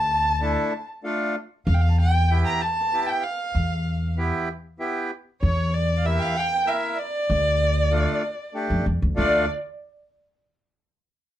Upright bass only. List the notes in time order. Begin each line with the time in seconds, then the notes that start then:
Already playing: D2
1.67 E2
3.55 E2
5.43 E2
7.30 D2
8.70 F2
8.86 E2
9.02 D2
9.18 D2